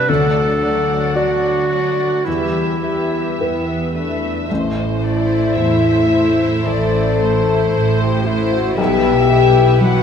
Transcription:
Already playing: G3 C4 E4 B4 D5
0.08 D2 D3 F#3 D4 A4 D5 F#5
0.60 F#3 D4 D5 F#5
1.15 D2 F#4 D5
1.69 F#3 D4 F#4 D5 F#5
2.25 E2 E3 G3 E4 G4 B4 E5
2.83 G3 E4 G4 B4 E5
3.39 E2 B3 E4 G4 B4
3.93 A3 D4 B4 E5
4.47 A1 A2 E4 C5
5.02 A3 E4 C5 D5
5.55 A1 E2 A2 C5 E5
6.10 A3 E4 C5
6.65 A1 A2 E3 A4 D5
7.20 A3 E4 C5
7.73 A1 A2 C5
8.02 G4
8.25 A3 E4 C5
8.52 F#4
8.77 B1 B2 G3 E4 G4 B4 E5
9.29 G3 E4 G4 B4
9.80 B1 B2 F#3 F#4 B4 F#5

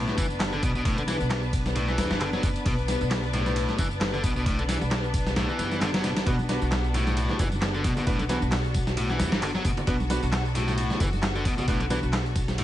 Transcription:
Already playing: A2 B3 D4 B4
0.08 snare, tambourine
0.18 F#1 E3, kick, ride, tambourine
0.30 tambourine
0.40 snare, clap, ride, tambourine
0.53 D3, tambourine
0.63 B1 B2, kick, ride, tambourine
0.75 B2, tambourine
0.85 A2, kick, ride, tambourine
0.98 D3, ride, tambourine
1.08 E3, snare, ride, tambourine
1.20 B1, tambourine
1.30 snare, clap, ride, tambourine
1.43 tambourine
1.53 kick, ride, tambourine
1.66 snare, tambourine
1.75 A2, ride, tambourine
1.88 E3, snare, tambourine
1.98 E2, snare, ride, tambourine
2.11 F#1, snare, tambourine
2.21 D3, clap, ride, tambourine
2.33 F#3, snare, tambourine
2.43 F#1 B2, kick, ride, tambourine
2.56 ride, tambourine
2.66 B1 B2, kick, ride, tambourine
2.78 tambourine
2.88 snare, ride, tambourine
3.01 B1, tambourine
3.11 snare, clap, ride, tambourine
3.23 tambourine
3.33 A2, snare, ride, tambourine
3.46 snare, tambourine
3.56 ride, tambourine
3.69 snare, tambourine
3.78 F#1 E3, kick, ride, tambourine
3.91 tambourine
4.01 snare, clap, ride, tambourine
4.14 D3, tambourine
4.24 B1 B2, kick, ride, tambourine
4.36 B2, tambourine
4.46 A2, kick, ride, tambourine
4.59 D3, ride, tambourine
4.69 E3, snare, ride, tambourine
4.81 B1, tambourine
4.91 snare, clap, ride, tambourine
5.04 tambourine
5.14 kick, ride, tambourine
5.26 snare, tambourine
5.36 A2, snare, ride, tambourine
5.49 E3, tambourine
5.59 F#1, snare, ride, tambourine
5.71 snare, tambourine
5.81 D3, snare, clap, ride, tambourine
5.94 F#3, snare, ride, tambourine
6.04 B2, snare, ride, tambourine
6.16 snare, ride, tambourine
6.26 B1 B2 B3 D4 F#4 B4, kick, ride, tambourine
6.39 tambourine, high conga
6.49 B3 D4 F#4 B4, snare, ride, tambourine
6.62 B1, tambourine
6.72 snare, clap, ride, tambourine
6.84 tambourine
6.94 A2, snare, ride, tambourine, high conga
7.07 snare, tambourine, high bongo
7.17 ride, tambourine
7.29 snare, tambourine, low conga
7.39 F#1 E3, kick, ride, tambourine, high bongo, low conga
7.52 tambourine, high conga
7.62 snare, clap, ride, tambourine
7.74 D3, tambourine
7.84 B1 B2, kick, ride, tambourine
7.96 B2, tambourine, high bongo, low conga
8.07 A2 B3 D4 F#4 B4, kick, ride, tambourine
8.19 D3, ride, tambourine, high conga
8.29 E3 B3 D4 F#4 B4, snare, ride, tambourine
8.42 B1, tambourine
8.52 snare, clap, ride, tambourine
8.64 tambourine
8.74 kick, ride, tambourine, high conga
8.87 snare, tambourine, high bongo
8.97 A2, ride, tambourine
9.10 E3, snare, tambourine
9.19 E2, snare, ride, tambourine
9.32 F#1, snare, tambourine, high conga
9.42 D3, clap, ride, tambourine
9.55 F#3, snare, tambourine
9.65 F#1 B2, kick, ride, tambourine
9.77 ride, tambourine, low conga
9.87 B1 B2 B3 D4 F#4 B4, kick, ride, tambourine
10.00 tambourine, high conga
10.10 B3 D4 F#4 B4, snare, ride, tambourine
10.23 B1, tambourine
10.32 snare, clap, ride, tambourine
10.45 tambourine
10.55 A2, snare, ride, tambourine, high conga
10.68 snare, tambourine, high bongo
10.78 ride, tambourine
10.90 snare, tambourine, low conga
11.00 F#1 E3, kick, ride, tambourine, high bongo, low conga
11.13 tambourine, high conga
11.23 snare, clap, ride, tambourine
11.35 D3, tambourine
11.45 B1 B2, kick, ride, tambourine
11.58 B2, tambourine, high bongo, low conga
11.68 A2 B3 D4 F#4 B4, kick, ride, tambourine
11.80 D3, ride, tambourine, high conga
11.90 E3 B3 D4 F#4 B4, snare, ride, tambourine, high bongo
12.03 B1, tambourine
12.13 snare, clap, ride, tambourine
12.26 tambourine
12.35 kick, ride, tambourine, high conga
12.48 snare, tambourine, high bongo
12.58 A2, ride, tambourine

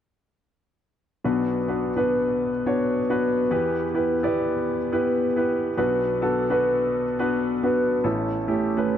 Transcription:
1.24 B1 B2 B3 D4 F#4 B4
1.68 B3 D4 F#4 B4
1.96 B3 D4 F#4 B4
2.66 B3 D4 F#4 C#5
3.09 B3 D4 F#4 B4
3.51 E2 E3 B3 E4 G4 B4
3.94 B3 E4 G4 B4
4.23 B3 E4 G4 D5
4.92 B3 E4 G4 B4
5.36 B3 E4 G4 B4
5.77 B1 B2 B3 D4 F#4 B4
6.21 B3 D4 F#4 A4
6.50 B3 D4 F#4 B4
7.19 B3 D4 F#4 B4
7.63 B3 D4 F#4 B4
8.04 A1 A2 A3 C#4 E4 A4
8.48 A3 C#4 E4 G4
8.77 A3 C#4 E4 B4

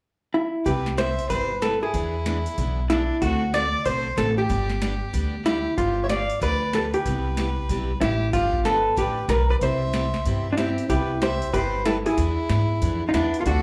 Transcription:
0.34 E4
0.65 C2 C3 G3 B3 E4 G4 B4, kick, open hi-hat
0.86 snare
0.97 C3 G3 B3 E4 G4 C5 E5, snare, closed hi-hat
1.19 open hi-hat
1.29 G1 C3 G3 B3 E4 G4 B4 C5, kick, open hi-hat
1.62 C3 G3 B3 E4 G4 A4 B4, snare, closed hi-hat
1.82 E4 G#4
1.94 E2 E3 B3 D4 G#4, kick, open hi-hat
2.26 E3 B3 D4 G#4, snare, closed hi-hat
2.46 open hi-hat
2.58 B1 E3 B3 D4 G#4, kick, open hi-hat
2.90 E3 B3 D4 E4 G#4, snare, closed hi-hat
3.22 D2 D3 A3 C4 F#4 A4, kick, open hi-hat
3.54 D3 A3 C4 F#4 A4 D5, snare, closed hi-hat
3.85 B1 D3 A3 C4 F#4 A4 C5, kick, open hi-hat
4.17 A1 D3 A3 C4 F#4 A4, snare, closed hi-hat
4.37 G4
4.49 G1 D3 G3 B3 D4 G4, kick, open hi-hat
4.69 snare
4.82 D3 G3 B3 D4 G4, snare, closed hi-hat
5.13 D2 D3 G3 B3 D4 G4, kick, open hi-hat
5.46 D3 G3 B3 D4 E4 G4, snare, closed hi-hat
5.77 G1 D3 F3 B3 D4 F4 G4, kick, open hi-hat
6.03 C#5 E5
6.09 D3 F3 B3 D4 G4 D5 F5, snare, closed hi-hat
6.30 open hi-hat
6.41 D2 D3 F3 B3 D4 G4 B4 D5, kick, open hi-hat
6.73 D3 F3 B3 D4 G4 A4 B4, snare, closed hi-hat
6.94 G4 B4, open hi-hat
7.05 C2 C3 G3 B3 E4 G4, kick, open hi-hat
7.37 C3 G3 B3 E4 G4, snare, closed hi-hat
7.69 B1 C3 G3 B3 E4 G4, kick, open hi-hat
8.01 A1 C3 G3 B3 E4 G4, snare, closed hi-hat
8.33 G1 D3 F3 B3 D4 F4 G4, kick, open hi-hat
8.53 kick
8.65 D3 F3 B3 D4 G4 A4 B4, snare, closed hi-hat
8.97 A1 D3 F3 B3 D4 G4 B4, kick, open hi-hat
9.28 B1 D3 F3 B3 D4 G4 A#4 B4, snare, closed hi-hat
9.50 B4 D5
9.61 C2 C3 G3 B3 E4 G4 C5 E5, kick, open hi-hat
9.93 C3 G3 B3 E4 G4, snare, closed hi-hat
10.14 snare
10.25 G2 C3 G3 B3 E4 G4, kick, open hi-hat
10.52 D4 F4
10.57 C3 G3 B3 C4 E4 G4, snare, closed hi-hat
10.78 open hi-hat
10.89 C2 C3 G3 B3 E4 G4 B4, kick, open hi-hat
11.22 C3 G3 B3 E4 G4 C5 E5, snare, closed hi-hat
11.42 open hi-hat
11.54 G1 C3 G3 B3 E4 G4 B4 C5, kick, open hi-hat
11.86 C3 G3 B3 E4 G4 A4 B4, snare, closed hi-hat
12.06 E4 G#4, open hi-hat
12.17 E2 E3 B3 D4 G#4, kick, open hi-hat
12.49 G#2 E3 B3 D4 G#4, snare, closed hi-hat
12.82 F2 E3 B3 D4 G#4, kick, open hi-hat
13.08 D#4 F4
13.13 E2 E3 B3 D4 E4 G#4, snare, closed hi-hat
13.34 open hi-hat
13.40 F4 A4
13.46 D2 D3 A3 C4 D4 F#4 A4, kick, open hi-hat

